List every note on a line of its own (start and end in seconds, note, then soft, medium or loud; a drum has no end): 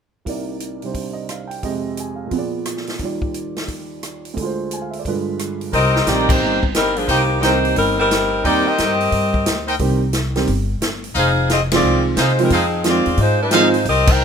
0.25 1.63 C2 soft
0.25 0.81 C3 soft
0.25 1.64 A#3 soft
0.25 1.64 D#4 soft
0.25 kick soft
0.25 open hi-hat soft
0.29 1.65 D5 soft
0.60 closed hi-hat soft
0.82 1.62 C3 soft
0.82 1.64 G3 soft
0.82 1.64 D4 soft
0.82 1.65 C5 soft
0.82 open hi-hat soft
0.94 kick soft
0.94 open hi-hat soft
1.13 1.37 D#5 soft
1.29 1.57 F5 soft
1.29 cross-stick medium
1.29 closed hi-hat soft
1.47 1.71 G5 soft
1.47 open hi-hat soft
1.63 2.32 F2 soft
1.63 2.32 C3 soft
1.63 2.32 G#3 soft
1.63 2.32 G4 soft
1.63 2.32 D#5 soft
1.63 kick soft
1.63 open hi-hat soft
1.97 2.25 G#5 soft
1.97 closed hi-hat soft
2.16 2.39 F5 soft
2.27 2.97 A#2 soft
2.27 2.99 F3 soft
2.31 3.00 B3 soft
2.31 3.02 G#4 soft
2.31 kick soft
2.31 open hi-hat soft
2.38 3.03 D5 soft
2.65 cross-stick medium
2.65 closed hi-hat soft
2.77 snare soft
2.87 snare soft
2.87 open hi-hat soft
2.99 4.36 D#2 soft
2.99 4.37 D#3 soft
2.99 4.38 G3 soft
2.99 kick soft
2.99 open hi-hat soft
3.04 4.38 F4 soft
3.04 4.39 D5 soft
3.22 kick soft
3.34 closed hi-hat soft
3.56 snare soft
3.56 open hi-hat soft
3.68 kick soft
3.68 open hi-hat soft
4.03 cross-stick medium
4.03 closed hi-hat soft
4.25 open hi-hat soft
4.34 5.03 D2 soft
4.34 5.04 D3 soft
4.34 kick soft
4.34 open hi-hat soft
4.40 5.06 G#3 soft
4.40 5.07 F4 soft
4.45 5.09 C5 soft
4.71 4.87 G#5 soft
4.71 closed hi-hat soft
4.82 4.95 F5 soft
4.91 5.00 E5 soft
4.91 open hi-hat soft
4.99 5.10 D5 soft
5.05 5.74 G2 soft
5.05 5.74 D3 soft
5.05 5.74 G#3 soft
5.05 5.74 F4 soft
5.05 5.75 B4 medium
5.05 kick soft
5.05 open hi-hat soft
5.39 cross-stick medium
5.39 closed hi-hat soft
5.61 open hi-hat soft
5.73 6.05 C2 medium
5.73 6.05 C4 medium
5.73 6.68 D#4 medium
5.73 6.05 G4 medium
5.73 6.68 A#4 medium
5.73 6.05 A#4 medium
5.73 6.68 C5 medium
5.73 6.05 D#5 loud
5.73 6.68 G5 medium
5.73 kick soft
5.73 open hi-hat soft
5.96 snare medium
6.06 6.38 A#1 medium
6.06 6.59 D#3 soft
6.06 6.59 G3 soft
6.06 6.30 A#3 medium
6.06 6.59 A#3 soft
6.06 6.59 C4 soft
6.06 6.30 D#4 medium
6.06 6.29 G4 medium
6.06 6.59 G4 soft
6.06 6.29 D5 medium
6.06 snare medium
6.06 closed hi-hat medium
6.29 6.64 A#3 medium
6.29 6.64 D#4 medium
6.29 6.64 G4 medium
6.29 6.64 C5 loud
6.29 kick medium
6.29 crash medium
6.41 7.05 G1 medium
6.63 kick medium
6.74 6.96 G3 medium
6.74 6.96 C4 medium
6.74 6.96 D#4 medium
6.74 6.96 A#4 medium
6.74 snare medium
6.74 closed hi-hat medium
6.96 7.09 F3 medium
6.96 7.07 A#3 medium
6.96 7.09 D4 medium
6.96 7.09 G#4 medium
6.96 open hi-hat soft
7.08 7.73 C2 medium
7.08 7.40 D#3 medium
7.08 7.40 A#3 medium
7.08 7.40 C4 medium
7.08 7.23 D#4 medium
7.08 7.40 G4 medium
7.08 7.23 A#4 medium
7.08 7.23 C5 medium
7.08 7.23 G5 medium
7.08 kick soft
7.08 open hi-hat soft
7.42 7.95 D#3 medium
7.42 7.95 G3 soft
7.42 7.76 A#3 medium
7.42 7.95 A#3 soft
7.42 7.95 C4 soft
7.42 7.75 D#4 medium
7.42 7.57 D#4 medium
7.42 7.76 G4 medium
7.42 7.95 G4 medium
7.42 7.57 A#4 medium
7.42 7.57 C5 medium
7.42 7.77 C5 medium
7.42 7.57 G5 medium
7.42 snare medium
7.42 closed hi-hat soft
7.65 open hi-hat soft
7.76 8.41 G1 medium
7.76 7.97 G3 medium
7.76 7.97 C4 medium
7.76 7.97 D#4 medium
7.76 7.97 A#4 medium
7.76 kick soft
7.76 open hi-hat soft
7.99 8.42 G3 medium
7.99 8.42 C4 medium
7.99 8.42 D#4 medium
7.99 8.42 A#4 medium
8.11 snare medium
8.11 closed hi-hat medium
8.44 8.76 D#2 medium
8.44 8.65 D#3 medium
8.44 8.65 G3 soft
8.44 8.65 A#3 soft
8.44 8.67 A#3 medium
8.44 8.65 C4 soft
8.44 8.96 D#4 medium
8.44 8.67 D#4 medium
8.44 8.66 G4 medium
8.44 8.65 G4 medium
8.44 8.96 A#4 medium
8.44 8.96 C5 medium
8.44 8.67 D5 loud
8.44 8.96 G5 medium
8.44 kick soft
8.44 open hi-hat soft
8.67 9.69 C4 medium
8.67 9.69 G4 medium
8.67 9.69 A#4 medium
8.67 9.69 D#5 medium
8.78 9.10 G2 medium
8.78 snare medium
8.78 closed hi-hat soft
9.01 open hi-hat soft
9.12 9.44 G2 medium
9.12 kick soft
9.12 open hi-hat soft
9.34 kick medium
9.46 9.78 D2 medium
9.46 snare medium
9.46 closed hi-hat medium
9.68 9.76 D#4 medium
9.68 9.76 A#4 medium
9.68 9.76 C5 medium
9.68 9.76 G5 medium
9.68 open hi-hat soft
9.79 10.44 C2 medium
9.79 10.00 D#3 medium
9.79 10.00 G3 soft
9.79 10.00 A#3 soft
9.79 10.00 C4 medium
9.79 10.00 G4 medium
9.79 kick soft
9.79 open hi-hat soft
10.13 snare medium
10.13 closed hi-hat medium
10.36 10.47 D#3 medium
10.36 10.47 G3 soft
10.36 10.47 A#3 medium
10.36 10.47 C4 medium
10.36 10.47 G4 medium
10.36 snare soft
10.36 open hi-hat soft
10.47 10.79 G1 medium
10.47 kick soft
10.47 open hi-hat soft
10.81 11.13 G1 medium
10.81 snare medium
10.81 closed hi-hat medium
11.04 open hi-hat soft
11.14 11.80 F1 medium
11.14 11.30 D#4 medium
11.14 11.48 D#4 medium
11.14 11.30 G#4 medium
11.14 11.48 G#4 medium
11.14 11.30 C5 medium
11.14 11.48 C5 medium
11.14 11.30 F5 medium
11.14 11.48 F5 medium
11.14 kick soft
11.14 open hi-hat soft
11.50 11.61 C4 medium
11.50 11.61 F4 medium
11.50 11.61 G#4 medium
11.50 11.61 D#5 medium
11.50 snare medium
11.50 closed hi-hat medium
11.72 12.15 D#3 medium
11.72 12.15 F3 medium
11.72 12.15 G#3 medium
11.72 12.15 C4 medium
11.72 12.05 C4 medium
11.72 12.15 F4 medium
11.72 12.05 F4 medium
11.72 12.05 G#4 medium
11.72 12.05 D5 medium
11.72 snare medium
11.72 ride medium
11.83 12.15 C2 medium
12.16 12.48 C3 medium
12.16 12.39 G#3 medium
12.16 12.32 D#4 medium
12.16 12.39 F4 medium
12.16 12.32 G#4 medium
12.16 12.32 C5 medium
12.16 12.39 C5 medium
12.16 12.32 F5 medium
12.16 snare medium
12.16 closed hi-hat medium
12.20 12.39 D#4 medium
12.39 12.50 D#3 medium
12.39 12.50 F3 medium
12.39 12.53 G3 medium
12.39 12.50 G#3 medium
12.39 12.50 C4 medium
12.39 12.52 C4 medium
12.39 12.52 D#4 medium
12.39 12.50 F4 medium
12.39 12.53 A#4 medium
12.39 open hi-hat soft
12.50 13.03 F2 medium
12.50 12.84 F3 medium
12.50 12.84 C4 medium
12.50 12.67 D#4 medium
12.50 12.84 D#4 medium
12.50 12.66 G#4 medium
12.50 12.84 G#4 medium
12.50 12.66 C5 medium
12.50 12.67 F5 medium
12.50 kick soft
12.50 open hi-hat soft
12.84 13.05 D#3 medium
12.84 13.05 F3 medium
12.84 13.05 G#3 medium
12.84 13.05 C4 medium
12.84 13.18 C4 medium
12.84 13.05 F4 medium
12.84 13.18 G#4 medium
12.84 13.18 D5 medium
12.84 snare medium
12.84 closed hi-hat medium
12.88 13.18 F4 medium
13.06 13.17 E2 medium
13.06 open hi-hat soft
13.17 13.82 G#2 medium
13.17 13.40 G#3 medium
13.17 13.40 D#4 medium
13.17 13.40 F4 medium
13.17 13.40 C5 medium
13.17 kick soft
13.17 open hi-hat soft
13.42 13.84 G#3 medium
13.42 13.84 D#4 medium
13.42 13.84 F4 medium
13.42 13.84 C5 medium
13.51 13.73 D#3 medium
13.51 13.72 F3 medium
13.51 13.73 G#3 medium
13.51 13.73 C4 medium
13.51 13.67 D#4 medium
13.51 13.73 F4 medium
13.51 13.67 G#4 medium
13.51 13.67 C5 medium
13.51 13.67 F5 loud
13.51 snare medium
13.51 closed hi-hat medium
13.74 open hi-hat soft
13.85 14.24 C2 medium
13.85 14.10 C4 medium
13.85 14.10 G4 medium
13.85 14.09 A#4 medium
13.85 14.09 D#5 loud
13.85 kick soft
13.85 open hi-hat soft
14.07 14.24 D#4 medium
14.07 14.24 A#4 medium
14.07 14.24 C5 medium
14.07 14.24 G5 loud
14.07 kick medium
14.07 crash medium